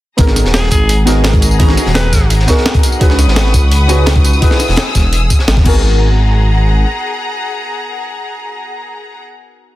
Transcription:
0.17 G#1 B3 D#4 F#4 G#4 A#4 F#5 A#5, kick, closed hi-hat
0.28 snare
0.36 snare, closed hi-hat, tambourine
0.45 D#1, snare
0.54 G#4, snare, closed hi-hat
0.63 snare
0.71 G#1 G#4, kick, closed hi-hat, tambourine
0.89 closed hi-hat
1.05 G#1 B3 D#4 F#4 G#4 A#4, snare, closed hi-hat, tambourine
1.24 snare, closed hi-hat
1.33 kick, snare, closed hi-hat
1.42 closed hi-hat, tambourine
1.51 tambourine
1.58 B3 D#4 F#4 G#4 A#5, kick, closed hi-hat
1.69 snare
1.77 snare, closed hi-hat, open hi-hat, tambourine
1.86 D#1, snare
1.95 B4, snare, closed hi-hat
2.13 G#1, kick, snare, closed hi-hat, tambourine
2.30 closed hi-hat
2.39 snare
2.47 B3 D#4 F#4 G#4 A#4, kick, snare, closed hi-hat, tambourine
2.58 snare
2.66 snare, closed hi-hat
2.74 kick, closed hi-hat
2.83 closed hi-hat, tambourine
2.92 tambourine
2.99 C#2 C#4 D#4 F#4 G#4 B4 C#6 D#6, kick, closed hi-hat
3.10 snare
3.19 snare, closed hi-hat, tambourine
3.27 G#1, snare
3.36 snare, closed hi-hat
3.46 snare
3.54 C#2, kick, closed hi-hat, tambourine
3.72 closed hi-hat
3.87 C#2 C#4 D#4 F#4 G#4 B4, snare, closed hi-hat, tambourine
4.06 snare, closed hi-hat
4.16 kick, snare, closed hi-hat
4.24 closed hi-hat, tambourine
4.33 tambourine
4.40 D#4 E4 F#4 G#4 B4 E6, kick, closed hi-hat
4.51 snare
4.59 snare, closed hi-hat, open hi-hat, tambourine
4.69 E1, snare
4.76 snare, closed hi-hat
4.95 E1, kick, snare, closed hi-hat, tambourine
5.13 closed hi-hat
5.30 kick, closed hi-hat, tambourine
5.39 snare
5.48 G#1, snare, closed hi-hat
5.57 E1, kick, snare
5.63 G#1 B3 D#4 F#4 G#4 F#5 A#5, kick, crash
5.68 A#4

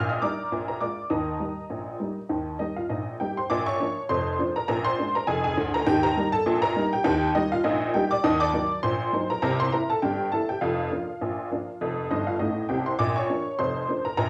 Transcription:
Already playing: A#1 A#2
0.09 D#5 D#6
0.22 G3 A#3 D#4 D5 A#5 D6
0.52 A#1 A#2
0.68 A#4 A#5
0.81 G#3 A#3 F4 D5 D6
1.10 D#2 D#3 D#5 A#5 D#6
1.40 G3 A#3 D#4
1.70 A#1 A#2
2.00 G3 A#3 D#4
2.29 D#2 D#3
2.59 G3 A#3 D#4 D#5
2.77 F4 F5
2.90 A#1 A#2 D#4 D#5
3.20 G3 A#3 D#4 G4 G5
3.37 C5 C6
3.50 A#1 A#2 D5 D6
3.66 C#5 C#6
3.80 F3 A#3 D4
4.09 F1 F2 C5 C6
4.39 F3 A#3 D4
4.56 A#4 A#5
4.68 A#1 A#2 A#4 A#5
4.84 C5 C6
4.98 G#3 A#3 D4
5.15 A#4 A#5
5.27 F1 F2 G#4 G#5
5.44 G#4 G#5
5.57 D2 D3
5.74 A#4 A#5
5.86 D#2 D#3 G4 G5
6.03 A#4 A#5
6.17 G3 A#3 D#4
6.32 A4 A5
6.46 A#1 A#2
6.62 A#4 A#5
6.76 G3 A#3 D#4
6.93 G4 G5
7.04 D#2 D#3 G4 G5
7.35 G3 A#3 D#4 D#5
7.52 F4 F5
7.64 A#1 A#2 D#4 D#5
7.94 G3 A#3 D#4 G4 G5
8.11 D5 D6
8.24 D#2 D#3 D#5 D#6
8.40 D5 D6
8.53 F#3 A#3 D#4
8.83 A#1 A#2 C5 C6
9.13 F#3 A#3 D#4
9.30 A#4 A#5
9.42 C2 C3 A#4 A#5
9.60 C5 C6
9.72 E3 A#3 E4 A#4 A#5
9.90 A4 A5
10.02 G1 G2 G4 G5
10.32 E3 A#3 E4 A4 A5
10.49 G4 G5
10.61 F1 F2 F4 F5
10.91 F3 A#3 D4
11.21 A#1 A#2
11.51 F3 A#3 D4
11.81 F1 F2
12.11 G1 G2 D#4 D#5
12.27 F4 F5
12.39 A1 A2 D#4 D#5
12.69 C2 C3 G4 G5
12.86 C5 C6
12.99 A#1 A#2 D5 D6
13.16 C#5 C#6
13.30 F3 A#3 D4
13.59 F1 F2 C5 C6
13.89 F3 A#3 D4
14.05 A#4 A#5
14.17 A#1 A#2 A#4 A#5

